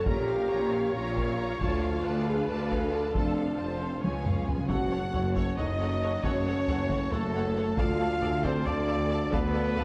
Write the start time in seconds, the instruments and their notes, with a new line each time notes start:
Already playing: string section C#4
0.06 double bass section A#1, tuba A#1, cello section A#2, string section F4 A#4 F5, violin section F4 C#5 A#5, french horn section G4, viola section A#4, taiko
0.29 violin section A#4 F5
0.50 double bass section A#1, tuba A#1, cello section A#2, violin section F4 C#5 A#5, viola section C#5
0.72 violin section A#4 F5
0.94 double bass section A#1, tuba A#1, cello section A#2, french horn section F4, violin section F4 C#5 A#5
1.16 violin section A#4 F5, taiko
1.38 violin section F4 C#5 A#5
1.61 cello section D2, double bass section D2, tuba D2, string section D4 A4, violin section F4 D5 A5, french horn section F4, taiko
1.81 violin section A4 F5
2.04 double bass section D2, cello section D2, tuba D2, violin section F4 D5 A5, viola section B4
2.26 french horn section G#4, violin section A4 F5
2.48 double bass section D2, cello section D2, tuba D2, violin section F4 D5 A5, french horn section A4
2.70 violin section A4 F5, taiko
2.93 violin section F4 D5 A5
3.15 double bass section F1, tuba F1, cello section F2, string section C4, french horn section D4, violin section F4 C5 A5, viola section A4, taiko
3.36 violin section A4 F5
3.58 double bass section F1, tuba F1, cello section F2, violin section F4 C5 A5, viola section C5
3.80 french horn section C4, violin section A4 F5
4.03 cello section C#2, tuba C#2, double bass section C#2, timpani C#3, string section B3 G#4 G#5, french horn section C#4, violin section F4 B4 G#5, viola section C#5, taiko high
4.11 timpani C#3
4.19 timpani C#3
4.25 timpani C#3, violin section G#4 C#5 F5, taiko low-mid
4.34 timpani C#3
4.42 timpani C#3
4.46 timpani C#3, violin section F4 B4 G#5, taiko low
4.56 timpani C#3
4.68 tuba F#1, double bass section F#1, cello section F#2, timpani F#2, string section A3 F#4 C#5 A5, french horn section F#4, viola section A4 C#5, violin section C#5 F#5, trumpet F#5, taiko
4.91 viola section A4 C#5, violin section C#5 F#5
5.13 tuba F#1, double bass section F#1, cello section F#2, viola section A4 C#5, violin section C#5 F#5, taiko low
5.35 french horn section C#4, viola section A4 C#5, violin section C#5 F#5, trumpet C#5, taiko
5.57 double bass section F#1, tuba F#1, cello section F#2, french horn section D#4, viola section A4 C#5, violin section C#5 D#5 F#5, trumpet D#5, taiko low
5.80 viola section A4 C#5, violin section C#5 F#5
6.03 viola section A4 C#5, violin section C#5 F#5
6.23 double bass section F#1, tuba F#1, cello section F#2, french horn section C#4, viola section A4 C#5, violin section C#5 F#5, trumpet C#5, taiko
6.47 viola section A4 C#5, violin section C#5 F#5
6.68 double bass section F#1, tuba F#1, cello section F#2, viola section A4 C#5, violin section C#5 F#5, taiko low
6.90 viola section A4 C#5, violin section C#5 F#5, taiko
7.12 double bass section F#1, tuba F#1, cello section F#2, french horn section A3, violin section A4 C#5 F#5, trumpet A4, viola section A4 C#5, taiko low
7.35 viola section A4 C#5, violin section C#5 F#5
7.57 viola section A4 C#5, violin section C#5 F#5
7.77 double bass section D2, tuba D2, cello section D2, french horn section F4, viola section A4 D5, string section A4 D5, violin section F5 A5, trumpet F5, taiko
8.01 viola section A4 D5, violin section F5 A5
8.22 cello section D2, double bass section D2, tuba D2, viola section A4 D5, violin section F5 A5, taiko low
8.44 french horn section C4, viola section A4 D5, violin section C5 F5 A5, trumpet C5, taiko
8.66 cello section D2, double bass section D2, tuba D2, french horn section D4, viola section A4 D5, violin section D5 F5 A5, trumpet D5, taiko low
8.88 viola section A4 D5, violin section F5 A5
9.10 viola section A4 D5, violin section F5 A5
9.32 double bass section D2, cello section D2, tuba D2, french horn section B3, viola section A4 D5, violin section B4 F5 A5, trumpet B4, taiko
9.54 viola section A4 D5, violin section F5 A5
9.75 tuba D2, cello section D2, double bass section D2, viola section A4 D5, violin section F5 A5, taiko low